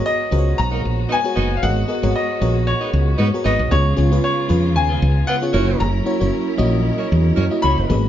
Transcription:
Already playing: string section G#3 B3 F#4, fm electric piano B3 F#4 G#4 A#4 C#5
0.06 grand piano D#5
0.31 fretless electric bass C#2, fm electric piano B3 F#4 G#4 A#4 C5
0.38 fm electric piano C#5
0.58 fretless electric bass B1, grand piano A#5
0.71 horn section A#3 D#4 F#4 A#4
0.85 fretless electric bass A#1
1.09 horn section B3 D#4 F#4 B4, grand piano G#5
1.24 fm electric piano B3 F#4 G#4 A#4 C#5
1.36 fretless electric bass F#1, horn section B3 D#4 F#4 B4
1.57 grand piano F5
1.62 fretless electric bass G#1, fm electric piano B3 F#4 G#4 A#4 D#5, grand piano F#5
1.88 fm electric piano B3 F#4 G#4 A#4 D#5
2.02 fretless electric bass G#1, fm electric piano B3 F#4 G#4 A#4 C#5
2.16 grand piano D#5
2.41 fretless electric bass A#1, fm electric piano B3 F#4 G#4 A#4 C#5
2.67 grand piano C#5
2.81 horn section B3 D#4 F#4 B4
2.93 fretless electric bass C#2
3.18 fretless electric bass G#2, horn section B3 D#4 F#4 B4
3.34 fm electric piano B3 F#4 G#4 A#4 C#5
3.44 fretless electric bass G#1, horn section B3 D#4 F#4 B4, grand piano D#5
3.59 fretless electric bass B1
3.71 fretless electric bass C#2, string section C#3 F4, fm electric piano B3 C#4 F4 G#4 C#5, grand piano C#5
3.96 fretless electric bass C#2, fm electric piano B3 C#4 F4 G#4 C#5
4.11 fm electric piano B3 C#4 F4 G#4 B4
4.24 grand piano C#5
4.48 fretless electric bass F2, fm electric piano B3 C#4 F4 G#4 B4
4.76 fretless electric bass D#2, grand piano G#5
4.89 horn section B3 F4 G#4 B4
5.02 fretless electric bass C#2
5.27 horn section B3 F4 G#4 B4, grand piano F#5
5.42 fm electric piano B3 C#4 F4 G#4 C#5
5.52 fretless electric bass F#1, string section F#3 C#4 E4 A#4, fm electric piano A#3 C#4 E4 F#4 C#5, horn section C#4 F#4 A#4 C#5
5.80 fretless electric bass F#1, grand piano A#5
6.05 fm electric piano A#3 C#4 E4 F#4 C#5
6.20 fretless electric bass F#1, fm electric piano A#3 C#4 E4 F#4 C#5
6.58 fretless electric bass A#1, fm electric piano A#3 C#4 E4 F#4 D#5
6.98 horn section C#4 F#4 A#4 C#5
7.12 fretless electric bass E2
7.36 fretless electric bass F#2, horn section C#4 F#4 A#4 C#5
7.50 fm electric piano A#3 C#4 E4 F#4 D#5
7.62 fretless electric bass C#2, horn section A#3 C#4 F#4 C#5, grand piano B5
7.78 fretless electric bass F#1
7.89 fretless electric bass G#1, string section G#3 C#4 F#4, fm electric piano A#3 C#4 F#4 G#4 B4

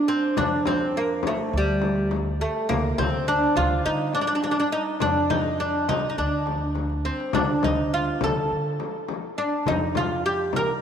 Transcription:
0.08 oud C4, darbuka ka
0.37 upright bass F2, oud D4, frame drum, darbuka dum
0.65 oud C4, frame drum
0.97 oud A#3
1.23 frame drum
1.27 oud A3
1.53 upright bass D2
1.57 oud G3
1.82 darbuka tek, frame drum
2.11 darbuka tek, frame drum
2.27 darbuka ka
2.41 oud A3
2.69 upright bass D2, oud A#3, frame drum, darbuka dum
2.98 upright bass D2, oud C4, frame drum, darbuka dum
3.28 oud D4
3.56 upright bass D2, oud F4, frame drum, darbuka dum
3.85 upright bass D3, oud D#4
4.13 oud D4, darbuka tek, frame drum
4.21 oud D4
4.27 oud D4
4.35 oud D4
4.43 oud D4, darbuka tek, frame drum
4.51 oud D4
4.60 oud D4
4.72 oud D#4, darbuka ka
5.00 upright bass F2, oud D4, frame drum, darbuka dum
5.16 darbuka ka
5.30 oud D#4, frame drum, darbuka dum
5.60 oud D4
5.88 oud D#4, frame drum, darbuka dum
6.10 oud D#4
6.18 upright bass D2, oud D4, darbuka ka
6.46 darbuka tek, frame drum
6.75 darbuka tek, frame drum
6.90 darbuka ka
7.05 oud C4, darbuka tek
7.20 darbuka ka
7.33 upright bass D2, oud D4, frame drum, darbuka dum
7.63 upright bass D2, oud D#4, frame drum, darbuka dum
7.94 oud F4
8.21 upright bass D2, oud A4, frame drum, darbuka dum
8.51 upright bass D3
8.80 darbuka tek, frame drum
9.08 darbuka tek, frame drum
9.22 darbuka ka
9.37 oud D4, darbuka ka
9.66 upright bass F2, oud D#4, darbuka dum, frame drum
9.95 oud F4, darbuka dum, frame drum
10.26 oud G4
10.53 oud A#4, frame drum, darbuka dum

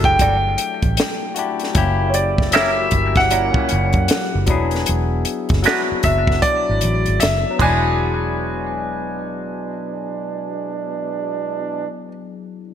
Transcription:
Already playing: fingered electric bass F#1, tine electric piano F#3 A3 D4 E4 F#4 G4 G#4 A4
0.04 grand piano G5, kick, closed hi-hat
0.19 fingered electric bass G1, clean electric guitar G3 D4 F#4 A4, kick, closed hi-hat
0.58 closed hi-hat
0.82 fingered electric bass A1, kick, closed hi-hat
0.97 snare, closed hi-hat
1.34 tine electric piano A3 D4 E4 F#4, closed hi-hat
1.39 tine electric piano G4
1.59 closed hi-hat
1.64 snare
1.73 fingered electric bass F#1, tine electric piano F#3 G3 C#4 E4, kick, closed hi-hat
1.78 tine electric piano A#3 G4
2.00 trombone section C#3 A#3 E4
2.10 grand piano C#5, closed hi-hat
2.14 trombone section C#3 E3 G4, grand piano D5
2.38 kick, snare
2.51 tine electric piano F#3 A#3 C#4 E4, clean electric guitar G3 C#4 E4 A#4, grand piano E5, closed hi-hat
2.56 tine electric piano G4, snare
2.77 trombone section C#3 A#3 F#4
2.91 fingered electric bass G1, kick, closed hi-hat
3.15 trombone section C#3 A#3 E4, grand piano F#5, kick, snare, closed hi-hat
3.30 trombone section A#2 G3 C#4, clean electric guitar G3 C#4 E4 A#4, closed hi-hat
3.54 kick
3.69 fingered electric bass F#1, closed hi-hat
3.93 fingered electric bass F#2, kick, closed hi-hat
4.08 snare, closed hi-hat
4.35 fingered electric bass F#1
4.46 fingered electric bass E1, tine electric piano F#3 B3 D4 E4, kick, closed hi-hat
4.51 tine electric piano G#4
4.71 closed hi-hat
4.75 snare
4.86 fingered electric bass E1, closed hi-hat
5.25 closed hi-hat
5.49 fingered electric bass F#1, kick, closed hi-hat
5.53 snare
5.63 tine electric piano F#3 B3 D4 E4, clean electric guitar G#3 D4, closed hi-hat
5.67 clean electric guitar F#4 B4, tine electric piano F#4, snare
5.92 muted fingered electric bass stroke
6.03 fingered electric bass F#1, grand piano E5, kick, closed hi-hat
6.27 kick, snare
6.42 grand piano D5, kick, closed hi-hat
6.69 fingered electric bass G#1
6.81 fingered electric bass A1, closed hi-hat
7.06 fingered electric bass G#1, closed hi-hat
7.20 fingered electric bass F#1, grand piano E5, snare, closed hi-hat
7.50 tine electric piano F#3
7.55 clean electric guitar G#3, tine electric piano B3
7.59 fingered electric bass E1, trombone section B2 G#3 D4, tine electric piano D4, clean electric guitar D4 F#4, grand piano G#5, kick, crash
7.64 tine electric piano E4, clean electric guitar B4
7.69 tine electric piano G#4

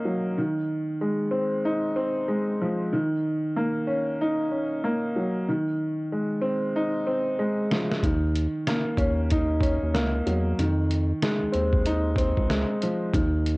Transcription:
Already playing: upright piano A#3 C#4 D#4
0.05 upright piano F#3
0.38 upright piano D#3
1.01 upright piano G#3
1.31 upright piano C4
1.65 upright piano D#4
1.96 upright piano C4
2.28 upright piano G#3
2.61 upright piano F3
2.93 upright piano D#3
3.56 upright piano A#3
3.87 upright piano C#4
4.21 upright piano D#4
4.51 upright piano C#4
4.84 upright piano A#3
5.16 upright piano F#3
5.48 upright piano D#3
6.12 upright piano G#3
6.42 upright piano C4
6.76 upright piano D#4
7.07 upright piano C4
7.39 upright piano G#3
7.71 upright piano F3, snare
7.91 snare
8.03 analog synth bass D#2, upright piano D#3, kick, closed hi-hat
8.36 closed hi-hat
8.67 upright piano A#3, cross-stick, snare, closed hi-hat
8.97 analog synth bass D#2, upright piano C#4, kick, closed hi-hat
9.30 upright piano D#4, kick, closed hi-hat
9.61 upright piano C#4, kick, closed hi-hat
9.83 analog synth bass D#2
9.94 analog synth bass C#2, upright piano A#3, cross-stick, snare, closed hi-hat
10.27 analog synth bass E2, upright piano F#3, closed hi-hat
10.59 analog synth bass F2, upright piano D#3, closed hi-hat
10.91 closed hi-hat
11.22 upright piano G#3, cross-stick, snare, closed hi-hat
11.42 analog synth bass D#2
11.52 analog synth bass D#2, upright piano C4, closed hi-hat
11.73 kick
11.86 upright piano D#4, closed hi-hat
12.16 upright piano C4, kick, closed hi-hat
12.37 analog synth bass C#2, kick
12.50 upright piano G#3, cross-stick, snare, closed hi-hat
12.82 upright piano F3, closed hi-hat
13.14 analog synth bass D#2, upright piano D#3, kick, closed hi-hat
13.46 closed hi-hat

